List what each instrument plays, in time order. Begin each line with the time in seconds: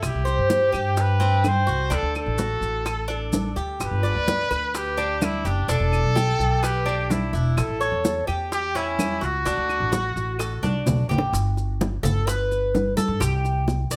Already playing: cuban tres E4
0.02 upright bass C2, trumpet G4, high bongo, high conga, claves, maracas
0.15 upright bass C2
0.25 cuban tres C5, high bongo, high conga, maracas
0.38 upright bass G2
0.50 high bongo, high conga, maracas
0.72 upright bass G2, cuban tres G4, high bongo, claves, maracas
0.97 trumpet B4, high bongo, high conga, maracas
1.20 cuban tres C4, high bongo, high conga, maracas
1.44 trumpet C5, high bongo, low bongo, high conga, claves, maracas
1.67 upright bass C2, cuban tres F#4, high conga, maracas
1.90 upright bass D2, cuban tres D4, trumpet A4, high bongo, high conga, maracas
2.02 upright bass D2
2.15 trumpet A4, high bongo, high conga, claves, maracas
2.26 upright bass A1
2.38 cuban tres F#4, high bongo, high conga, maracas
2.61 upright bass A1, high bongo, high conga, maracas
2.86 cuban tres A4, high bongo, high conga, claves, maracas
3.08 cuban tres D4, high bongo, high conga, maracas
3.33 high bongo, low bongo, high conga, maracas
3.56 upright bass D2, cuban tres G4, high conga, maracas
3.80 upright bass G1, high bongo, high conga, claves, maracas
3.85 trumpet B4
3.91 upright bass G1
4.03 cuban tres D5, high bongo, high conga, maracas
4.15 upright bass D2
4.28 high bongo, high conga, maracas
4.50 upright bass D2, cuban tres B4, high bongo, claves, maracas
4.75 trumpet G4, high bongo, high conga, maracas
4.98 cuban tres D4, high bongo, high conga, maracas
5.22 trumpet E4, high bongo, low bongo, high conga, claves, maracas
5.45 upright bass F#1, trumpet D4, cuban tres G4, high conga, maracas
5.68 upright bass E1, cuban tres D4, trumpet A4, high bongo, high conga, maracas
5.80 upright bass E1
5.92 high bongo, high conga, claves, maracas
6.04 upright bass B1
6.15 cuban tres G4, high bongo, high conga, maracas
6.39 upright bass B1, high bongo, high conga, maracas
6.63 trumpet G4, cuban tres B4, high bongo, high conga, claves, maracas
6.86 cuban tres D4, high bongo, high conga, maracas
7.10 trumpet E4, high bongo, low bongo, high conga, maracas
7.33 upright bass E1, trumpet D4, cuban tres E4, high conga, maracas
7.57 upright bass A1, trumpet A4, high bongo, high conga, claves, maracas
7.68 upright bass A1
7.81 cuban tres C#5, high bongo, high conga, maracas
7.92 upright bass E2
8.05 high bongo, high conga, maracas
8.27 upright bass E2, cuban tres G4, high bongo, claves, maracas
8.52 trumpet G4, high bongo, high conga, maracas
8.75 cuban tres C#4, trumpet E4, high bongo, high conga, maracas
8.99 high bongo, low bongo, high conga, claves, maracas
9.21 upright bass C#2, cuban tres F#4, trumpet F#4, high conga, maracas
9.46 upright bass D2, cuban tres D4, high bongo, high conga, maracas
9.57 upright bass D2
9.69 high bongo, high conga, claves, maracas
9.80 upright bass A1
9.92 cuban tres F#4, high bongo, high conga, maracas
10.16 upright bass A1, high bongo, high conga, maracas
10.39 cuban tres A4, high bongo, high conga, claves, maracas
10.63 upright bass C2, cuban tres D4, high bongo, high conga, maracas
10.86 upright bass B1, high bongo, low conga, maracas
11.09 upright bass A1, cuban tres G4, low conga, maracas
11.18 low bongo
11.33 upright bass G1, high bongo, high conga, maracas
11.57 high bongo, high conga, maracas
11.81 high bongo, high conga, maracas
12.03 upright bass G1, cuban tres A4, high conga, low conga, maracas
12.27 cuban tres B4, high bongo, high conga, maracas
12.51 high bongo, high conga, maracas
12.75 high bongo, low bongo, high conga, maracas
12.97 cuban tres A4, high bongo, high conga, maracas
13.08 upright bass G2
13.20 upright bass C2, cuban tres G4, high bongo, high conga, maracas
13.45 high bongo, high conga, maracas
13.68 high bongo, high conga, maracas
13.91 upright bass C2, cuban tres D5, high conga, maracas